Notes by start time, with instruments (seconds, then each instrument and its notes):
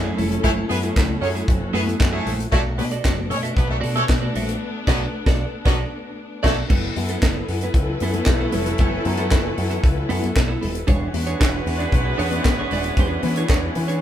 Already playing: picked electric bass F#2, string section F#3 C#4 E4 G#4 A4
0.04 clean electric guitar A3 E4 G#4
0.17 picked electric bass F1, clean electric guitar A3 E4 A4, open hi-hat, muted conga, low conga
0.31 muted clean electric guitar stroke, closed hi-hat
0.43 picked electric bass F#1, horn section E3 A3 C#4 A4, clean electric guitar A3 E4 G#4, string section F#4, kick, closed hi-hat, low conga
0.57 muted clean electric guitar stroke
0.69 picked electric bass F#2, horn section B3 G#4 B4, muted clean electric guitar stroke, open hi-hat, high conga
0.83 clean electric guitar A3 E4 G#4, closed hi-hat
0.96 picked electric bass C#2, clean electric guitar A3 E4 G#4, kick, snare, clap, closed hi-hat, muted conga
1.09 muted clean electric guitar stroke, high conga
1.21 picked electric bass F#2, horn section A3 C#4 G#4 C#5, muted clean electric guitar stroke, open hi-hat
1.35 clean electric guitar A3 E4 G#4, closed hi-hat
1.48 picked electric bass F#1, muted clean electric guitar stroke, kick, closed hi-hat, muted conga
1.60 picked electric bass F#1, muted clean electric guitar stroke
1.73 picked electric bass F#2, clean electric guitar A3 E4 G#4, horn section B3 G#4 B4, open hi-hat
1.87 clean electric guitar A3 E4 G#4, closed hi-hat, high conga
2.00 picked electric bass F#2, muted clean electric guitar stroke, kick, snare, clap, closed hi-hat, high conga
2.12 horn section E3 A3 C#4 A4, clean electric guitar A3 E4 G#4
2.26 picked electric bass A#1, clean electric guitar A3 E4 G#4, open hi-hat, low conga
2.40 muted clean electric guitar stroke, closed hi-hat
2.52 picked electric bass B1, horn section F#3 A3 D4 A4, string section A3 B3 D4, clean electric guitar F#4 A4 D5, kick, closed hi-hat, muted conga, low conga
2.66 muted clean electric guitar stroke
2.78 picked electric bass B2, horn section F#3 B3 D4 B4, muted clean electric guitar stroke, open hi-hat, high conga
2.91 clean electric guitar F#4 A4 D5, closed hi-hat
3.04 picked electric bass F#1, clean electric guitar F#4 A4 D5, kick, snare, clap, closed hi-hat
3.17 muted clean electric guitar stroke, high conga
3.29 picked electric bass B2, horn section C#4 A4 C#5, muted clean electric guitar stroke, open hi-hat, muted conga
3.43 clean electric guitar F#4 A4 E5, closed hi-hat
3.55 picked electric bass B1, horn section F#3 B3 D4 B4, muted clean electric guitar stroke, kick, closed hi-hat
3.68 picked electric bass B1, horn section F#3 A3 D4 A4, muted clean electric guitar stroke
3.81 picked electric bass B2, clean electric guitar F#4 A4 D5, open hi-hat
3.95 horn section C#4 A4 C#5, clean electric guitar F#4 A4 E5, closed hi-hat, high conga
4.08 picked electric bass B2, muted clean electric guitar stroke, kick, snare, clap, closed hi-hat, muted conga, high conga
4.21 clean electric guitar F#4 A4 D5
4.35 picked electric bass A#1, clean electric guitar F#4 A4 E5, open hi-hat, low conga
4.48 muted clean electric guitar stroke, closed hi-hat
4.87 picked electric bass B1, horn section F#3 B3 D4 B4, clean electric guitar F#4 A4 D5, kick, snare, crash
5.26 picked electric bass B1, clean electric guitar F#4 A4 D5, kick, snare
5.65 picked electric bass B1, horn section F#3 B3 D4 B4, clean electric guitar F#4 A4 D5, kick, snare
6.43 picked electric bass B1, horn section F#3 A3 D4 A4, clean electric guitar F#4 A4 D5, kick, snare, crash
6.69 picked electric bass F#1, string section F#3 E4 A4 B4, clean electric guitar B3 E4 A4, kick, crash, low conga
6.82 muted clean electric guitar stroke
6.95 picked electric bass F#2, muted clean electric guitar stroke, open hi-hat, high conga
7.08 clean electric guitar B3 E4 A4, closed hi-hat
7.22 picked electric bass F#1, clean electric guitar B3 E4 A4, kick, snare, clap, closed hi-hat
7.36 muted clean electric guitar stroke
7.48 picked electric bass F#2, muted clean electric guitar stroke, open hi-hat
7.61 clean electric guitar B3 E4 B4, closed hi-hat
7.74 picked electric bass C#2, horn section E3 A3 C#4 A4, muted clean electric guitar stroke, kick, closed hi-hat, muted conga
7.89 muted clean electric guitar stroke
8.00 picked electric bass F#2, clean electric guitar B3 E4 A4, open hi-hat
8.13 clean electric guitar B3 E4 B4, closed hi-hat, high conga
8.25 picked electric bass B1, muted clean electric guitar stroke, kick, snare, clap, closed hi-hat, muted conga, high conga
8.40 clean electric guitar B3 E4 A4
8.52 picked electric bass F1, clean electric guitar B3 E4 B4, open hi-hat, muted conga, low conga
8.66 muted clean electric guitar stroke, closed hi-hat
8.78 picked electric bass F#1, clean electric guitar B3 E4 A4, kick, closed hi-hat, muted conga, low conga
8.93 muted clean electric guitar stroke
9.05 picked electric bass F#2, muted clean electric guitar stroke, open hi-hat, muted conga, high conga
9.17 clean electric guitar B3 E4 A4, closed hi-hat
9.30 picked electric bass F#1, clean electric guitar B3 E4 A4, kick, snare, clap, closed hi-hat
9.44 muted clean electric guitar stroke
9.57 picked electric bass F#2, muted clean electric guitar stroke, open hi-hat, muted conga
9.70 clean electric guitar B3 E4 A4, closed hi-hat
9.83 picked electric bass C#2, muted clean electric guitar stroke, kick, closed hi-hat
9.97 muted clean electric guitar stroke
10.09 picked electric bass F#2, clean electric guitar B3 E4 A4, open hi-hat, muted conga
10.23 clean electric guitar B3 E4 A4, closed hi-hat, high conga
10.36 picked electric bass B1, muted clean electric guitar stroke, kick, snare, clap, closed hi-hat, high conga
10.48 clean electric guitar B3 E4 A4
10.61 picked electric bass D#1, clean electric guitar B3 E4 A4, open hi-hat, low conga
10.74 muted clean electric guitar stroke, closed hi-hat
10.87 picked electric bass E1, string section E3 B3 C#4 D4 F#4, horn section G#3 B3 F#4 B4, clean electric guitar D4 G#4 C#5, kick, closed hi-hat, low conga
11.02 muted clean electric guitar stroke
11.14 picked electric bass E2, muted clean electric guitar stroke, open hi-hat, high conga
11.27 clean electric guitar D4 G#4 C#5, closed hi-hat
11.40 picked electric bass E1, clean electric guitar D4 G#4 C#5, kick, snare, clap, closed hi-hat, muted conga
11.53 muted clean electric guitar stroke
11.66 picked electric bass E2, muted clean electric guitar stroke, open hi-hat, muted conga
11.78 clean electric guitar D4 G#4 D5, closed hi-hat
11.92 picked electric bass B1, muted clean electric guitar stroke, kick, closed hi-hat, muted conga
12.05 muted clean electric guitar stroke
12.18 picked electric bass E2, clean electric guitar D4 G#4 C#5, open hi-hat, muted conga
12.31 clean electric guitar D4 G#4 D5, closed hi-hat, high conga
12.44 picked electric bass G#1, muted clean electric guitar stroke, kick, snare, clap, closed hi-hat, muted conga, high conga
12.59 clean electric guitar D4 G#4 C#5
12.71 picked electric bass D#1, clean electric guitar D4 G#4 D5, open hi-hat, muted conga, low conga
12.84 muted clean electric guitar stroke, closed hi-hat
12.97 picked electric bass E2, clean electric guitar D4 G#4 C#5, string section E4, kick, closed hi-hat, muted conga, low conga
13.12 muted clean electric guitar stroke
13.23 picked electric bass E3, muted clean electric guitar stroke, open hi-hat, muted conga, high conga
13.36 clean electric guitar D4 G#4 C#5, closed hi-hat
13.49 picked electric bass E2, clean electric guitar D4 G#4 C#5, kick, snare, clap, closed hi-hat
13.63 muted clean electric guitar stroke
13.75 picked electric bass E3, muted clean electric guitar stroke, open hi-hat
13.88 clean electric guitar D4 G#4 C#5, closed hi-hat